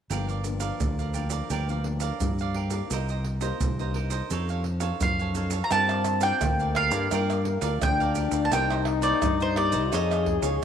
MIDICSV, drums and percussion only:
0, 0, Header, 1, 4, 480
1, 0, Start_track
1, 0, Key_signature, -2, "minor"
1, 0, Tempo, 701754
1, 72, Time_signature, 4, 2, 24, 8
1, 7279, End_track
2, 0, Start_track
2, 0, Title_t, "Pandeiro"
2, 72, Note_on_c, 9, 54, 75
2, 140, Note_off_c, 9, 54, 0
2, 197, Note_on_c, 9, 54, 29
2, 265, Note_off_c, 9, 54, 0
2, 302, Note_on_c, 9, 54, 55
2, 370, Note_off_c, 9, 54, 0
2, 411, Note_on_c, 9, 54, 60
2, 479, Note_off_c, 9, 54, 0
2, 548, Note_on_c, 9, 54, 75
2, 616, Note_off_c, 9, 54, 0
2, 676, Note_on_c, 9, 54, 31
2, 744, Note_off_c, 9, 54, 0
2, 778, Note_on_c, 9, 54, 52
2, 847, Note_off_c, 9, 54, 0
2, 888, Note_on_c, 9, 54, 62
2, 957, Note_off_c, 9, 54, 0
2, 1027, Note_on_c, 9, 54, 68
2, 1095, Note_off_c, 9, 54, 0
2, 1155, Note_on_c, 9, 54, 33
2, 1224, Note_off_c, 9, 54, 0
2, 1260, Note_on_c, 9, 54, 52
2, 1328, Note_off_c, 9, 54, 0
2, 1369, Note_on_c, 9, 54, 63
2, 1437, Note_off_c, 9, 54, 0
2, 1507, Note_on_c, 9, 54, 76
2, 1575, Note_off_c, 9, 54, 0
2, 1632, Note_on_c, 9, 54, 32
2, 1701, Note_off_c, 9, 54, 0
2, 1740, Note_on_c, 9, 54, 56
2, 1808, Note_off_c, 9, 54, 0
2, 1850, Note_on_c, 9, 54, 61
2, 1918, Note_off_c, 9, 54, 0
2, 1987, Note_on_c, 9, 54, 77
2, 2056, Note_off_c, 9, 54, 0
2, 2111, Note_on_c, 9, 54, 31
2, 2180, Note_off_c, 9, 54, 0
2, 2220, Note_on_c, 9, 54, 56
2, 2288, Note_off_c, 9, 54, 0
2, 2332, Note_on_c, 9, 54, 64
2, 2401, Note_off_c, 9, 54, 0
2, 2467, Note_on_c, 9, 54, 81
2, 2535, Note_off_c, 9, 54, 0
2, 2595, Note_on_c, 9, 54, 33
2, 2663, Note_off_c, 9, 54, 0
2, 2697, Note_on_c, 9, 54, 56
2, 2765, Note_off_c, 9, 54, 0
2, 2808, Note_on_c, 9, 54, 58
2, 2876, Note_off_c, 9, 54, 0
2, 2944, Note_on_c, 9, 54, 74
2, 3012, Note_off_c, 9, 54, 0
2, 3070, Note_on_c, 9, 54, 31
2, 3138, Note_off_c, 9, 54, 0
2, 3174, Note_on_c, 9, 54, 54
2, 3242, Note_off_c, 9, 54, 0
2, 3286, Note_on_c, 9, 54, 66
2, 3354, Note_off_c, 9, 54, 0
2, 3423, Note_on_c, 9, 54, 81
2, 3492, Note_off_c, 9, 54, 0
2, 3552, Note_on_c, 9, 54, 32
2, 3620, Note_off_c, 9, 54, 0
2, 3657, Note_on_c, 9, 54, 59
2, 3726, Note_off_c, 9, 54, 0
2, 3765, Note_on_c, 9, 54, 64
2, 3834, Note_off_c, 9, 54, 0
2, 3903, Note_on_c, 9, 54, 78
2, 3971, Note_off_c, 9, 54, 0
2, 4029, Note_on_c, 9, 54, 35
2, 4097, Note_off_c, 9, 54, 0
2, 4135, Note_on_c, 9, 54, 55
2, 4203, Note_off_c, 9, 54, 0
2, 4246, Note_on_c, 9, 54, 67
2, 4314, Note_off_c, 9, 54, 0
2, 4384, Note_on_c, 9, 54, 80
2, 4452, Note_off_c, 9, 54, 0
2, 4510, Note_on_c, 9, 54, 33
2, 4579, Note_off_c, 9, 54, 0
2, 4616, Note_on_c, 9, 54, 53
2, 4685, Note_off_c, 9, 54, 0
2, 4728, Note_on_c, 9, 54, 60
2, 4796, Note_off_c, 9, 54, 0
2, 4864, Note_on_c, 9, 54, 75
2, 4933, Note_off_c, 9, 54, 0
2, 4992, Note_on_c, 9, 54, 33
2, 5060, Note_off_c, 9, 54, 0
2, 5097, Note_on_c, 9, 54, 61
2, 5165, Note_off_c, 9, 54, 0
2, 5210, Note_on_c, 9, 54, 68
2, 5278, Note_off_c, 9, 54, 0
2, 5346, Note_on_c, 9, 54, 81
2, 5414, Note_off_c, 9, 54, 0
2, 5474, Note_on_c, 9, 54, 31
2, 5542, Note_off_c, 9, 54, 0
2, 5575, Note_on_c, 9, 54, 57
2, 5644, Note_off_c, 9, 54, 0
2, 5687, Note_on_c, 9, 54, 65
2, 5756, Note_off_c, 9, 54, 0
2, 5825, Note_on_c, 9, 54, 80
2, 5893, Note_off_c, 9, 54, 0
2, 5954, Note_on_c, 9, 54, 34
2, 6022, Note_off_c, 9, 54, 0
2, 6055, Note_on_c, 9, 54, 55
2, 6123, Note_off_c, 9, 54, 0
2, 6170, Note_on_c, 9, 54, 63
2, 6239, Note_off_c, 9, 54, 0
2, 6306, Note_on_c, 9, 54, 81
2, 6374, Note_off_c, 9, 54, 0
2, 6433, Note_on_c, 9, 54, 33
2, 6501, Note_off_c, 9, 54, 0
2, 6540, Note_on_c, 9, 54, 58
2, 6609, Note_off_c, 9, 54, 0
2, 6650, Note_on_c, 9, 54, 61
2, 6718, Note_off_c, 9, 54, 0
2, 6789, Note_on_c, 9, 54, 74
2, 6857, Note_off_c, 9, 54, 0
2, 6918, Note_on_c, 9, 54, 32
2, 6986, Note_off_c, 9, 54, 0
2, 7020, Note_on_c, 9, 54, 56
2, 7088, Note_off_c, 9, 54, 0
2, 7131, Note_on_c, 9, 54, 66
2, 7199, Note_off_c, 9, 54, 0
2, 7279, End_track
3, 0, Start_track
3, 0, Title_t, "Tamborim"
3, 3903, Note_on_c, 9, 60, 78
3, 3971, Note_off_c, 9, 60, 0
3, 4029, Note_on_c, 9, 60, 78
3, 4097, Note_off_c, 9, 60, 0
3, 4135, Note_on_c, 9, 60, 76
3, 4203, Note_off_c, 9, 60, 0
3, 4384, Note_on_c, 9, 60, 83
3, 4452, Note_off_c, 9, 60, 0
3, 4616, Note_on_c, 9, 60, 77
3, 4685, Note_off_c, 9, 60, 0
3, 4864, Note_on_c, 9, 60, 76
3, 4933, Note_off_c, 9, 60, 0
3, 4992, Note_on_c, 9, 60, 78
3, 5060, Note_off_c, 9, 60, 0
3, 5346, Note_on_c, 9, 60, 76
3, 5414, Note_off_c, 9, 60, 0
3, 5825, Note_on_c, 9, 60, 77
3, 5893, Note_off_c, 9, 60, 0
3, 5954, Note_on_c, 9, 60, 84
3, 6022, Note_off_c, 9, 60, 0
3, 6055, Note_on_c, 9, 60, 79
3, 6123, Note_off_c, 9, 60, 0
3, 6306, Note_on_c, 9, 60, 87
3, 6374, Note_off_c, 9, 60, 0
3, 6540, Note_on_c, 9, 60, 77
3, 6609, Note_off_c, 9, 60, 0
3, 6789, Note_on_c, 9, 60, 75
3, 6857, Note_off_c, 9, 60, 0
3, 6918, Note_on_c, 9, 60, 77
3, 6986, Note_off_c, 9, 60, 0
3, 7279, End_track
4, 0, Start_track
4, 0, Title_t, "Drums"
4, 72, Note_on_c, 9, 82, 72
4, 72, Note_on_c, 9, 87, 55
4, 140, Note_off_c, 9, 82, 0
4, 140, Note_off_c, 9, 87, 0
4, 197, Note_on_c, 9, 82, 31
4, 265, Note_off_c, 9, 82, 0
4, 302, Note_on_c, 9, 82, 61
4, 370, Note_off_c, 9, 82, 0
4, 411, Note_on_c, 9, 82, 69
4, 479, Note_off_c, 9, 82, 0
4, 548, Note_on_c, 9, 82, 79
4, 548, Note_on_c, 9, 87, 98
4, 616, Note_off_c, 9, 82, 0
4, 616, Note_off_c, 9, 87, 0
4, 676, Note_on_c, 9, 82, 32
4, 744, Note_off_c, 9, 82, 0
4, 778, Note_on_c, 9, 82, 65
4, 847, Note_off_c, 9, 82, 0
4, 888, Note_on_c, 9, 82, 68
4, 957, Note_off_c, 9, 82, 0
4, 1027, Note_on_c, 9, 82, 76
4, 1027, Note_on_c, 9, 87, 54
4, 1095, Note_off_c, 9, 82, 0
4, 1095, Note_off_c, 9, 87, 0
4, 1155, Note_on_c, 9, 82, 29
4, 1224, Note_off_c, 9, 82, 0
4, 1369, Note_on_c, 9, 82, 75
4, 1437, Note_off_c, 9, 82, 0
4, 1507, Note_on_c, 9, 82, 73
4, 1507, Note_on_c, 9, 87, 91
4, 1575, Note_off_c, 9, 82, 0
4, 1575, Note_off_c, 9, 87, 0
4, 1632, Note_on_c, 9, 82, 31
4, 1701, Note_off_c, 9, 82, 0
4, 1850, Note_on_c, 9, 82, 71
4, 1918, Note_off_c, 9, 82, 0
4, 1987, Note_on_c, 9, 82, 76
4, 1987, Note_on_c, 9, 87, 52
4, 2056, Note_off_c, 9, 82, 0
4, 2056, Note_off_c, 9, 87, 0
4, 2111, Note_on_c, 9, 82, 31
4, 2180, Note_off_c, 9, 82, 0
4, 2332, Note_on_c, 9, 82, 72
4, 2401, Note_off_c, 9, 82, 0
4, 2467, Note_on_c, 9, 82, 79
4, 2467, Note_on_c, 9, 87, 100
4, 2535, Note_off_c, 9, 82, 0
4, 2535, Note_off_c, 9, 87, 0
4, 2595, Note_on_c, 9, 82, 33
4, 2663, Note_off_c, 9, 82, 0
4, 2808, Note_on_c, 9, 82, 75
4, 2876, Note_off_c, 9, 82, 0
4, 2944, Note_on_c, 9, 82, 77
4, 2944, Note_on_c, 9, 87, 51
4, 3012, Note_off_c, 9, 82, 0
4, 3012, Note_off_c, 9, 87, 0
4, 3070, Note_on_c, 9, 82, 30
4, 3138, Note_off_c, 9, 82, 0
4, 3286, Note_on_c, 9, 82, 79
4, 3354, Note_off_c, 9, 82, 0
4, 3423, Note_on_c, 9, 82, 80
4, 3423, Note_on_c, 9, 87, 96
4, 3492, Note_off_c, 9, 82, 0
4, 3492, Note_off_c, 9, 87, 0
4, 3552, Note_on_c, 9, 82, 30
4, 3620, Note_off_c, 9, 82, 0
4, 3657, Note_on_c, 9, 82, 66
4, 3726, Note_off_c, 9, 82, 0
4, 3765, Note_on_c, 9, 82, 79
4, 3834, Note_off_c, 9, 82, 0
4, 3903, Note_on_c, 9, 82, 79
4, 3903, Note_on_c, 9, 87, 55
4, 3971, Note_off_c, 9, 82, 0
4, 3971, Note_off_c, 9, 87, 0
4, 4029, Note_on_c, 9, 82, 34
4, 4097, Note_off_c, 9, 82, 0
4, 4135, Note_on_c, 9, 82, 63
4, 4203, Note_off_c, 9, 82, 0
4, 4246, Note_on_c, 9, 82, 72
4, 4314, Note_off_c, 9, 82, 0
4, 4384, Note_on_c, 9, 82, 80
4, 4384, Note_on_c, 9, 87, 104
4, 4452, Note_off_c, 9, 82, 0
4, 4452, Note_off_c, 9, 87, 0
4, 4510, Note_on_c, 9, 82, 33
4, 4579, Note_off_c, 9, 82, 0
4, 4728, Note_on_c, 9, 82, 78
4, 4796, Note_off_c, 9, 82, 0
4, 4864, Note_on_c, 9, 82, 77
4, 4864, Note_on_c, 9, 87, 56
4, 4933, Note_off_c, 9, 82, 0
4, 4933, Note_off_c, 9, 87, 0
4, 4992, Note_on_c, 9, 82, 32
4, 5060, Note_off_c, 9, 82, 0
4, 5210, Note_on_c, 9, 82, 77
4, 5278, Note_off_c, 9, 82, 0
4, 5346, Note_on_c, 9, 82, 77
4, 5346, Note_on_c, 9, 87, 97
4, 5414, Note_off_c, 9, 82, 0
4, 5414, Note_off_c, 9, 87, 0
4, 5474, Note_on_c, 9, 82, 34
4, 5542, Note_off_c, 9, 82, 0
4, 5575, Note_on_c, 9, 82, 73
4, 5644, Note_off_c, 9, 82, 0
4, 5687, Note_on_c, 9, 82, 77
4, 5756, Note_off_c, 9, 82, 0
4, 5825, Note_on_c, 9, 82, 76
4, 5825, Note_on_c, 9, 87, 57
4, 5893, Note_off_c, 9, 82, 0
4, 5893, Note_off_c, 9, 87, 0
4, 5954, Note_on_c, 9, 82, 34
4, 6022, Note_off_c, 9, 82, 0
4, 6170, Note_on_c, 9, 82, 72
4, 6239, Note_off_c, 9, 82, 0
4, 6306, Note_on_c, 9, 82, 84
4, 6306, Note_on_c, 9, 87, 104
4, 6374, Note_off_c, 9, 82, 0
4, 6374, Note_off_c, 9, 87, 0
4, 6433, Note_on_c, 9, 82, 31
4, 6501, Note_off_c, 9, 82, 0
4, 6650, Note_on_c, 9, 82, 73
4, 6718, Note_off_c, 9, 82, 0
4, 6789, Note_on_c, 9, 82, 75
4, 6789, Note_on_c, 9, 87, 53
4, 6857, Note_off_c, 9, 82, 0
4, 6857, Note_off_c, 9, 87, 0
4, 6918, Note_on_c, 9, 82, 32
4, 6986, Note_off_c, 9, 82, 0
4, 7020, Note_on_c, 9, 87, 72
4, 7088, Note_off_c, 9, 87, 0
4, 7131, Note_on_c, 9, 82, 84
4, 7199, Note_off_c, 9, 82, 0
4, 7279, End_track
0, 0, End_of_file